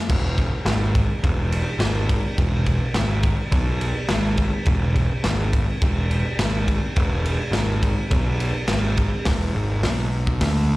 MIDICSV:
0, 0, Header, 1, 3, 480
1, 0, Start_track
1, 0, Tempo, 574163
1, 74, Time_signature, 4, 2, 24, 8
1, 9001, End_track
2, 0, Start_track
2, 0, Title_t, "Picked electric bass"
2, 0, Program_c, 0, 34
2, 74, Note_on_c, 0, 28, 98
2, 407, Note_off_c, 0, 28, 0
2, 543, Note_on_c, 0, 32, 105
2, 880, Note_off_c, 0, 32, 0
2, 1032, Note_on_c, 0, 28, 101
2, 1365, Note_off_c, 0, 28, 0
2, 1493, Note_on_c, 0, 32, 83
2, 1833, Note_off_c, 0, 32, 0
2, 1988, Note_on_c, 0, 28, 103
2, 2323, Note_off_c, 0, 28, 0
2, 2462, Note_on_c, 0, 32, 106
2, 2799, Note_off_c, 0, 32, 0
2, 2938, Note_on_c, 0, 35, 89
2, 3276, Note_off_c, 0, 35, 0
2, 3431, Note_on_c, 0, 32, 86
2, 3764, Note_off_c, 0, 32, 0
2, 3900, Note_on_c, 0, 28, 103
2, 4237, Note_off_c, 0, 28, 0
2, 4380, Note_on_c, 0, 32, 100
2, 4718, Note_off_c, 0, 32, 0
2, 4864, Note_on_c, 0, 28, 96
2, 5200, Note_off_c, 0, 28, 0
2, 5338, Note_on_c, 0, 32, 88
2, 5676, Note_off_c, 0, 32, 0
2, 5823, Note_on_c, 0, 28, 99
2, 6160, Note_off_c, 0, 28, 0
2, 6282, Note_on_c, 0, 32, 92
2, 6626, Note_off_c, 0, 32, 0
2, 6775, Note_on_c, 0, 35, 99
2, 7115, Note_off_c, 0, 35, 0
2, 7257, Note_on_c, 0, 32, 86
2, 7596, Note_off_c, 0, 32, 0
2, 7738, Note_on_c, 0, 28, 88
2, 7972, Note_off_c, 0, 28, 0
2, 7984, Note_on_c, 0, 32, 93
2, 8216, Note_off_c, 0, 32, 0
2, 8228, Note_on_c, 0, 35, 91
2, 8686, Note_off_c, 0, 35, 0
2, 8702, Note_on_c, 0, 38, 92
2, 9001, Note_off_c, 0, 38, 0
2, 9001, End_track
3, 0, Start_track
3, 0, Title_t, "Drums"
3, 81, Note_on_c, 9, 36, 115
3, 83, Note_on_c, 9, 49, 116
3, 165, Note_off_c, 9, 36, 0
3, 166, Note_off_c, 9, 49, 0
3, 317, Note_on_c, 9, 36, 76
3, 320, Note_on_c, 9, 51, 64
3, 401, Note_off_c, 9, 36, 0
3, 403, Note_off_c, 9, 51, 0
3, 554, Note_on_c, 9, 38, 106
3, 554, Note_on_c, 9, 51, 96
3, 637, Note_off_c, 9, 38, 0
3, 638, Note_off_c, 9, 51, 0
3, 795, Note_on_c, 9, 36, 102
3, 798, Note_on_c, 9, 51, 77
3, 879, Note_off_c, 9, 36, 0
3, 881, Note_off_c, 9, 51, 0
3, 1035, Note_on_c, 9, 36, 116
3, 1036, Note_on_c, 9, 51, 107
3, 1118, Note_off_c, 9, 36, 0
3, 1119, Note_off_c, 9, 51, 0
3, 1274, Note_on_c, 9, 51, 85
3, 1357, Note_off_c, 9, 51, 0
3, 1505, Note_on_c, 9, 38, 117
3, 1506, Note_on_c, 9, 51, 109
3, 1589, Note_off_c, 9, 38, 0
3, 1590, Note_off_c, 9, 51, 0
3, 1750, Note_on_c, 9, 51, 84
3, 1751, Note_on_c, 9, 36, 92
3, 1834, Note_off_c, 9, 36, 0
3, 1834, Note_off_c, 9, 51, 0
3, 1990, Note_on_c, 9, 36, 108
3, 1990, Note_on_c, 9, 51, 111
3, 2074, Note_off_c, 9, 36, 0
3, 2074, Note_off_c, 9, 51, 0
3, 2226, Note_on_c, 9, 51, 73
3, 2229, Note_on_c, 9, 36, 72
3, 2310, Note_off_c, 9, 51, 0
3, 2312, Note_off_c, 9, 36, 0
3, 2461, Note_on_c, 9, 38, 110
3, 2462, Note_on_c, 9, 51, 103
3, 2545, Note_off_c, 9, 38, 0
3, 2546, Note_off_c, 9, 51, 0
3, 2701, Note_on_c, 9, 51, 87
3, 2705, Note_on_c, 9, 36, 95
3, 2784, Note_off_c, 9, 51, 0
3, 2789, Note_off_c, 9, 36, 0
3, 2943, Note_on_c, 9, 51, 117
3, 2945, Note_on_c, 9, 36, 119
3, 3026, Note_off_c, 9, 51, 0
3, 3029, Note_off_c, 9, 36, 0
3, 3186, Note_on_c, 9, 51, 83
3, 3269, Note_off_c, 9, 51, 0
3, 3416, Note_on_c, 9, 38, 120
3, 3417, Note_on_c, 9, 51, 106
3, 3500, Note_off_c, 9, 38, 0
3, 3501, Note_off_c, 9, 51, 0
3, 3656, Note_on_c, 9, 51, 78
3, 3662, Note_on_c, 9, 36, 86
3, 3740, Note_off_c, 9, 51, 0
3, 3746, Note_off_c, 9, 36, 0
3, 3891, Note_on_c, 9, 51, 104
3, 3901, Note_on_c, 9, 36, 118
3, 3975, Note_off_c, 9, 51, 0
3, 3985, Note_off_c, 9, 36, 0
3, 4144, Note_on_c, 9, 36, 74
3, 4144, Note_on_c, 9, 51, 69
3, 4227, Note_off_c, 9, 51, 0
3, 4228, Note_off_c, 9, 36, 0
3, 4380, Note_on_c, 9, 38, 112
3, 4381, Note_on_c, 9, 51, 104
3, 4463, Note_off_c, 9, 38, 0
3, 4464, Note_off_c, 9, 51, 0
3, 4626, Note_on_c, 9, 36, 98
3, 4628, Note_on_c, 9, 51, 82
3, 4710, Note_off_c, 9, 36, 0
3, 4711, Note_off_c, 9, 51, 0
3, 4864, Note_on_c, 9, 36, 116
3, 4865, Note_on_c, 9, 51, 99
3, 4948, Note_off_c, 9, 36, 0
3, 4948, Note_off_c, 9, 51, 0
3, 5107, Note_on_c, 9, 51, 73
3, 5191, Note_off_c, 9, 51, 0
3, 5342, Note_on_c, 9, 38, 125
3, 5343, Note_on_c, 9, 51, 106
3, 5426, Note_off_c, 9, 38, 0
3, 5426, Note_off_c, 9, 51, 0
3, 5584, Note_on_c, 9, 36, 85
3, 5584, Note_on_c, 9, 51, 84
3, 5668, Note_off_c, 9, 36, 0
3, 5668, Note_off_c, 9, 51, 0
3, 5819, Note_on_c, 9, 51, 111
3, 5824, Note_on_c, 9, 36, 114
3, 5902, Note_off_c, 9, 51, 0
3, 5908, Note_off_c, 9, 36, 0
3, 6065, Note_on_c, 9, 51, 81
3, 6149, Note_off_c, 9, 51, 0
3, 6298, Note_on_c, 9, 38, 121
3, 6298, Note_on_c, 9, 51, 106
3, 6381, Note_off_c, 9, 38, 0
3, 6382, Note_off_c, 9, 51, 0
3, 6544, Note_on_c, 9, 36, 88
3, 6544, Note_on_c, 9, 51, 86
3, 6627, Note_off_c, 9, 51, 0
3, 6628, Note_off_c, 9, 36, 0
3, 6779, Note_on_c, 9, 51, 114
3, 6784, Note_on_c, 9, 36, 121
3, 6862, Note_off_c, 9, 51, 0
3, 6867, Note_off_c, 9, 36, 0
3, 7023, Note_on_c, 9, 51, 87
3, 7107, Note_off_c, 9, 51, 0
3, 7255, Note_on_c, 9, 38, 119
3, 7256, Note_on_c, 9, 51, 118
3, 7339, Note_off_c, 9, 38, 0
3, 7339, Note_off_c, 9, 51, 0
3, 7501, Note_on_c, 9, 51, 82
3, 7506, Note_on_c, 9, 36, 82
3, 7585, Note_off_c, 9, 51, 0
3, 7590, Note_off_c, 9, 36, 0
3, 7737, Note_on_c, 9, 38, 113
3, 7737, Note_on_c, 9, 46, 60
3, 7745, Note_on_c, 9, 36, 123
3, 7820, Note_off_c, 9, 38, 0
3, 7821, Note_off_c, 9, 46, 0
3, 7828, Note_off_c, 9, 36, 0
3, 8221, Note_on_c, 9, 38, 110
3, 8222, Note_on_c, 9, 46, 54
3, 8305, Note_off_c, 9, 38, 0
3, 8306, Note_off_c, 9, 46, 0
3, 8587, Note_on_c, 9, 36, 89
3, 8671, Note_off_c, 9, 36, 0
3, 8703, Note_on_c, 9, 38, 127
3, 8704, Note_on_c, 9, 46, 68
3, 8707, Note_on_c, 9, 36, 105
3, 8787, Note_off_c, 9, 38, 0
3, 8788, Note_off_c, 9, 46, 0
3, 8790, Note_off_c, 9, 36, 0
3, 9001, End_track
0, 0, End_of_file